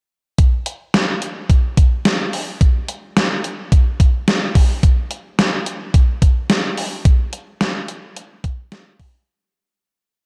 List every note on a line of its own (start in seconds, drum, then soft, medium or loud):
0.39 kick loud
0.39 closed hi-hat medium
0.66 closed hi-hat medium
0.94 snare loud
0.94 closed hi-hat medium
1.22 closed hi-hat medium
1.50 kick medium
1.50 closed hi-hat medium
1.77 kick medium
1.77 closed hi-hat medium
2.05 snare loud
2.05 closed hi-hat medium
2.33 open hi-hat medium
2.61 kick loud
2.61 closed hi-hat medium
2.88 closed hi-hat medium
3.17 snare loud
3.17 closed hi-hat medium
3.44 closed hi-hat medium
3.72 kick loud
3.72 closed hi-hat medium
4.00 kick medium
4.00 closed hi-hat medium
4.28 snare loud
4.28 closed hi-hat medium
4.55 kick loud
4.55 open hi-hat medium
4.83 kick loud
4.83 closed hi-hat medium
5.11 closed hi-hat medium
5.39 snare loud
5.39 closed hi-hat medium
5.66 closed hi-hat medium
5.94 kick medium
5.94 closed hi-hat medium
6.22 kick medium
6.22 closed hi-hat medium
6.50 snare loud
6.50 closed hi-hat medium
6.78 open hi-hat medium
7.05 kick loud
7.05 closed hi-hat medium
7.33 closed hi-hat medium
7.61 snare loud
7.61 closed hi-hat medium
7.88 closed hi-hat medium
8.16 closed hi-hat medium
8.44 kick medium
8.44 closed hi-hat medium
8.72 snare loud
8.72 closed hi-hat medium
9.00 kick loud
9.00 open hi-hat medium